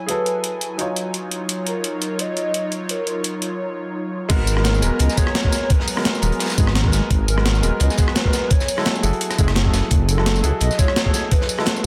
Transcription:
Already playing: F#3 E4 C#5 G#5
0.06 E4 F#4 G#4 B4, closed hi-hat
0.11 A4
0.26 closed hi-hat
0.44 closed hi-hat
0.61 closed hi-hat
0.77 F#3 D#4 F4 C#5, closed hi-hat
0.81 C#5
0.96 closed hi-hat
1.14 closed hi-hat
1.31 closed hi-hat
1.49 closed hi-hat
1.67 A#4, closed hi-hat
1.84 closed hi-hat
2.02 closed hi-hat
2.19 D#5, closed hi-hat
2.37 closed hi-hat
2.54 closed hi-hat
2.72 closed hi-hat
2.89 A#4, closed hi-hat
3.07 closed hi-hat
3.24 closed hi-hat
3.42 closed hi-hat
4.29 G#1 F#3 G#3 B3 F#4 A#4 G#5 A#5, kick, closed hi-hat, crash
4.47 A#4, closed hi-hat, tambourine
4.56 G#3 B3 F#4 A#4, cross-stick
4.64 snare, closed hi-hat
4.74 tambourine
4.81 D#1 G#3 B3 F#4 A#4, closed hi-hat, tambourine
4.99 C#2 D#5, closed hi-hat
5.09 snare, tambourine
5.17 G#3 B3 F#4 G#4 C#5, kick, snare, closed hi-hat, tambourine
5.27 cross-stick
5.35 snare, closed hi-hat
5.42 G#3 B3 F#4, kick
5.47 A#4
5.52 snare, closed hi-hat, tambourine
5.70 B4, kick, closed hi-hat
5.80 snare
5.88 closed hi-hat, open hi-hat, tambourine
5.96 G#3 B3 F#4 A#4, cross-stick, snare
6.05 snare, closed hi-hat
6.15 tambourine
6.22 D#1 G#3 B3 F#4 A#4, closed hi-hat, tambourine
6.32 closed hi-hat
6.40 snare, closed hi-hat
6.45 snare, closed hi-hat
6.50 snare, closed hi-hat, tambourine
6.57 G#1 G#3 B3 F#4 G#4, kick, closed hi-hat, tambourine
6.67 cross-stick, snare
6.75 snare, closed hi-hat
6.83 G#3 B3 F#4, kick
6.87 A#4
6.92 G#1, snare, closed hi-hat, tambourine
7.10 G#1, kick, closed hi-hat
7.28 A#4, closed hi-hat, tambourine
7.36 G#3 B3 F#4 A#4, cross-stick
7.45 snare, closed hi-hat
7.55 tambourine
7.62 D#1 G#3 B3 F#4 A#4, closed hi-hat, tambourine
7.80 C#2 D#5, closed hi-hat
7.90 snare, tambourine
7.97 G#3 B3 F#4 G#4 B4, kick, snare, closed hi-hat, tambourine
8.08 cross-stick
8.15 snare, closed hi-hat
8.24 G#3 B3 F#4 A#4, kick
8.33 snare, closed hi-hat, tambourine
8.50 F#3 E4 C#5, kick, closed hi-hat
8.60 snare, tambourine
8.68 closed hi-hat, open hi-hat, tambourine
8.77 G#3 E4 F#4 A4, cross-stick, snare
8.85 snare, closed hi-hat
8.95 tambourine
9.03 F#1 E4 F#4 G#4 A4, closed hi-hat, tambourine
9.13 closed hi-hat
9.21 closed hi-hat
9.30 cross-stick, snare, closed hi-hat, tambourine
9.38 F#1 G#3 E4 F#4 G#4, kick, closed hi-hat, tambourine
9.48 cross-stick, snare, closed hi-hat
9.55 snare, closed hi-hat
9.64 E4 F#4 G#4, kick
9.68 A4
9.73 F#1, snare, closed hi-hat, tambourine
9.91 F#1 D#5, kick, closed hi-hat
10.09 A4, closed hi-hat, tambourine
10.17 G#3 E4 F#4 A4, cross-stick
10.26 snare, closed hi-hat
10.36 tambourine
10.43 C#2 E4 F#4 G#4 A4, closed hi-hat, tambourine
10.61 B1 D#5, closed hi-hat
10.71 snare, tambourine
10.78 G#3 E4 F#4 G#4 C#5, kick, snare, closed hi-hat, tambourine
10.88 cross-stick
10.96 snare, closed hi-hat
11.04 E4 F#4 G#4, kick
11.08 A4
11.14 snare, closed hi-hat, tambourine
11.31 B4, kick, closed hi-hat
11.41 snare
11.49 closed hi-hat, open hi-hat, tambourine
11.58 G#3 E4 F#4 A4, cross-stick, snare
11.66 snare, closed hi-hat
11.76 tambourine

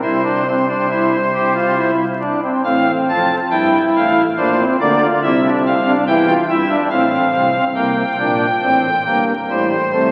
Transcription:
0.02 C2 C3 E4 C5
0.24 D4
0.46 C4
0.68 D4
0.89 E4
1.35 G4
1.55 F4
1.77 E4
2.21 D4
2.43 C4
2.64 A1 A2 C4 F5
3.09 F1 F2 A5
3.51 G1 G2 E4 G5
3.95 A1 A2 F5
4.38 A#1 A#2 D4 C5
4.58 C4
4.80 D2 D3 A#3 D5
5.01 F4
5.23 C2 C3 E4 E5
5.45 D4
5.66 C4 F5
5.86 D4
6.07 E2 E3 E4 G5
6.27 F4
6.50 G1 G2 E4 E5
6.70 D4
6.90 A1 A2 C4 F5
7.32 C2 C3
7.75 C2 C3 A#3 G5
8.18 A#1 A#2 D4
8.61 A1 A2 C4
9.06 G1 G2 A#3
9.49 A1 A2 G3 C5
9.92 C2 C3 A3

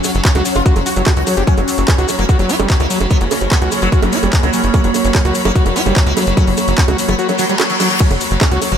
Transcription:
Already playing: F#3 C#4 F#4 C#5 F#5
0.04 F#3, open hi-hat, high bongo, maracas
0.15 F#1 F#3, closed hi-hat, maracas
0.25 C#4 F#4, kick, clap, closed hi-hat, maracas
0.35 C#2 F#3 F#4, closed hi-hat, high bongo, maracas
0.45 F#3, open hi-hat, maracas
0.54 F#1 F4, closed hi-hat, high bongo, maracas
0.66 F#3 F#4, kick, closed hi-hat, maracas
0.76 F#1 F#3, closed hi-hat, high bongo, maracas
0.86 F#4, open hi-hat, maracas
0.96 F#1 F#3, closed hi-hat, maracas
1.06 F#3 F#4, kick, clap, closed hi-hat, high bongo, maracas
1.16 C#2 F#4, closed hi-hat, maracas
1.27 F#3, open hi-hat, high bongo, maracas
1.37 F#1 F#3 G4, closed hi-hat, maracas
1.47 F#3 A#3 C#4, kick, closed hi-hat, maracas
1.57 F#1 F#3, closed hi-hat, high bongo, maracas
1.68 F#3, open hi-hat, maracas
1.78 F#1 F#3, closed hi-hat, maracas
1.88 A#3 C#4 F#4, kick, clap, closed hi-hat, high bongo, maracas
1.92 B5
1.98 C#2 F#3 F#4, closed hi-hat, maracas
2.08 F#3, open hi-hat, high bongo, maracas
2.19 F#1 F#3 A#3, closed hi-hat, maracas
2.29 F#3 F#4, kick, closed hi-hat, high bongo, maracas
2.39 F#1 F#3, closed hi-hat, maracas
2.49 B3 F#4, open hi-hat, maracas
2.60 F#1 F#3 G3, closed hi-hat, high bongo, maracas
2.69 F#3, kick, clap, closed hi-hat, maracas
2.80 C#2 A#3, closed hi-hat, high bongo, maracas
2.90 F#3, open hi-hat, maracas
3.00 F#1 F#3, closed hi-hat, high bongo, maracas
3.10 F#3 B3, kick, closed hi-hat, maracas
3.21 F#1 C#3 F#3, closed hi-hat, maracas
3.31 C#3, open hi-hat, high bongo, maracas
3.41 F#1 C#3 F#3, closed hi-hat, maracas
3.51 F#3 B3 F#4, kick, clap, closed hi-hat, high bongo, maracas
3.62 C#2 C#3 F#4, closed hi-hat, maracas
3.72 C#3, open hi-hat, high bongo, maracas
3.82 F#1 F#3, closed hi-hat, maracas
3.92 C#3 F#4, kick, closed hi-hat, maracas
4.02 F#1 C#3 F#3, closed hi-hat, high bongo, maracas
4.12 A#3 F#4, open hi-hat, maracas
4.23 F#1 C#3 G3, closed hi-hat, high bongo, maracas
4.33 C#3, kick, clap, closed hi-hat, maracas
4.43 C#2 F#3, closed hi-hat, high bongo, maracas
4.53 C#3 F#3, open hi-hat, maracas
4.63 F#1 C#3, closed hi-hat, maracas
4.74 F#3 C#4, kick, closed hi-hat, high bongo, maracas
4.84 F#1 F#3, closed hi-hat, maracas
4.94 F#3, open hi-hat, high bongo, maracas
5.04 F#1 F#3, closed hi-hat, maracas
5.15 C#4 F#4, kick, clap, closed hi-hat, high bongo, maracas
5.25 C#2 F#3 F#4, closed hi-hat, maracas
5.34 F#3, open hi-hat, maracas
5.45 F#1 F#3 A#3, closed hi-hat, high bongo, maracas
5.55 F#3 F#4, kick, closed hi-hat, maracas
5.66 F#1 F#3, closed hi-hat, high bongo, maracas
5.76 B3 F#4, open hi-hat, maracas
5.86 F#1 F#3 G3, closed hi-hat, high bongo, maracas
5.96 F#3, kick, clap, closed hi-hat, maracas
6.07 C#2 A#3, closed hi-hat, maracas
6.17 F#3, open hi-hat, high bongo, maracas
6.27 F#1 F#3, closed hi-hat, maracas
6.37 F#3 C#4, kick, closed hi-hat, high bongo, maracas
6.46 F#1 F#3, open hi-hat, maracas
6.57 F#3, open hi-hat, high bongo, maracas
6.68 F#1 F#3, closed hi-hat, maracas
6.78 C#4 F#4, kick, clap, closed hi-hat, maracas
6.88 C#2 F#3 F#4, closed hi-hat, high bongo, maracas
6.98 F#3, open hi-hat, maracas
7.09 F#1 F#3 B3, closed hi-hat, high bongo, maracas
7.19 F#3 F#4, closed hi-hat, reverse cymbal, maracas
7.29 F#3, closed hi-hat, high bongo, maracas
7.38 F#3, open hi-hat, maracas
7.49 F#3 G3, closed hi-hat, maracas
7.60 F#3 F#4, clap, closed hi-hat, high bongo, maracas
7.70 F#3, closed hi-hat, maracas
7.80 F#3, open hi-hat, high bongo, maracas
7.90 F#3, closed hi-hat, maracas
8.00 F#3 C#4, kick, closed hi-hat, crash, maracas
8.11 F#1 F#3, closed hi-hat, high bongo, maracas
8.20 F#3, open hi-hat, maracas
8.31 F#1 F#3, closed hi-hat, maracas
8.41 A#3 C#4 F#4, kick, clap, closed hi-hat, high bongo, maracas
8.45 F#5
8.51 C#2 F#3 F#4, closed hi-hat, maracas
8.62 F#3, open hi-hat, high bongo, maracas
8.72 F#1 F#3 A#3, closed hi-hat, maracas

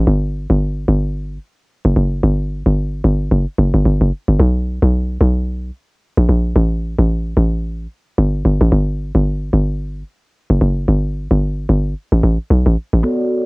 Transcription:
0.07 G1
0.50 G1
0.88 G1
1.85 F#1
1.96 F#1
2.23 G1
2.66 G1
3.04 G1
3.31 F#1
3.58 F#1
3.74 G1
3.85 G1
4.01 F#1
4.28 G1
4.39 B1
4.82 B1
5.21 B1
6.17 A#1
6.29 A#1
6.56 A1
6.99 A1
7.37 A1
8.18 G1
8.45 G1
8.61 A1
8.72 G1
9.15 G1
9.53 G1
10.50 F#1
10.61 F#1
10.88 G1
11.31 G1
11.69 G1
12.12 A1
12.23 A1
12.50 B1
12.66 A1
12.93 A1
13.03 B3 F#4 A4 C#5 D5

